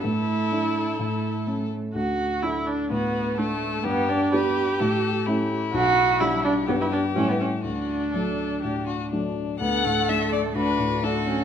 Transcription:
<<
  \new Staff \with { instrumentName = "Violin" } { \time 4/4 \key d \major \tempo 4 = 126 a'2.~ a'8 r8 | r2 fis'4 a'4 | g'4 b'4 a'4 e'4~ | e'2 g'2 |
fis'4 a'4 g'8 fis'8 d'4 | fis''4 e''8 d''8 b'4 a'4 | }
  \new Staff \with { instrumentName = "Viola" } { \time 4/4 \key d \major e'2. r4 | fis'4 e'8 d'8 b4 a4 | b8 d'8 g'2~ g'8 r8 | fis'4 e'8 d'8 b16 e'16 d'8 cis'16 b16 cis'8 |
d'2. r4 | b8 a4. d'4 d'8 cis'8 | }
  \new Staff \with { instrumentName = "Cello" } { \time 4/4 \key d \major a2 a4. r8 | r4 a4 r4 a4 | r4 b4 r4 a4 | r4 g4 g4 g4 |
r4 fis4 r4 fis4 | a'2 fis'4 fis'4 | }
  \new Staff \with { instrumentName = "Grand piano" } { \time 4/4 \key d \major a,4 <a d' e'>4 a,4 <a cis' a'>4 | d,4 <a d' a'>4 a,4 <a d' a'>4 | g,4 <b d' g'>4 a,4 <a cis' e'>4 | b,,4 <g d' g'>4 <g, g b g'>4 <a, g a e'>4 |
d,4 <fis a d'>4 a,4 <fis a d'>4 | d,8 a,8 <a d' a'>8 a8 d,8 a,8 <a d' a'>8 a8 | }
>>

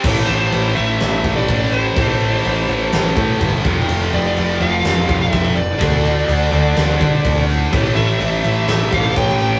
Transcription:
<<
  \new Staff \with { instrumentName = "Lead electric guitar" } { \time 4/4 \key a \minor \tempo 4 = 125 r8 c''16 c''8. e''4~ e''16 d''8. c''8~ | c''2.~ c''8 r8 | r8 d''16 d''8. f''4~ f''16 e''8. d''8~ | d''2.~ d''8 r8 |
r8 e''4. e''8 f''8 g''4 | }
  \new Staff \with { instrumentName = "Distorted electric guitar" } { \clef bass \time 4/4 \key a \minor <a, e a>1 | <a, e a>2.~ <a, e a>8 <f, c f>8~ | <f, c f>2.~ <f, c f>8 r8 | <d a d'>1 |
<a, e a>1 | }
  \new Staff \with { instrumentName = "Picked electric bass" } { \clef bass \time 4/4 \key a \minor a,,8 a,,8 a,,8 a,,8 a,,8 a,,8 a,,4 | a,,4 a,,8 a,,8 a,,8 a,8 g,,8 f,,8 | f,,8 f,,8 f,,8 f,,8 f,,8 f,,8 f,,4 | d,4 d,8 d,8 d,8 d8 d,4 |
a,,8 a,,8 a,,8 a,,8 a,,8 a,,8 a,,4 | }
  \new DrumStaff \with { instrumentName = "Drums" } \drummode { \time 4/4 <cymc bd>8 cymc8 cymc8 cymc8 <cymc sn>8 <cymc bd>8 <cymc bd>16 sn16 cymc8 | <cymc bd>8 cymc8 cymc8 cymc8 <cymc sn>8 <cymc bd>8 <cymc bd>16 sn16 <cymc bd>8 | cymc8 cymc8 cymc8 cymc8 <cymc sn>8 <cymc bd>8 <cymc bd>8 cymc8 | <cymc bd>8 cymc8 cymc8 cymc8 <cymc sn>8 <cymc bd>8 <cymc bd>16 sn16 cymc8 |
<cymc bd>8 cymc8 cymc8 cymc8 <cymc sn>8 <cymc bd>8 <cymc bd>16 sn16 cymc8 | }
>>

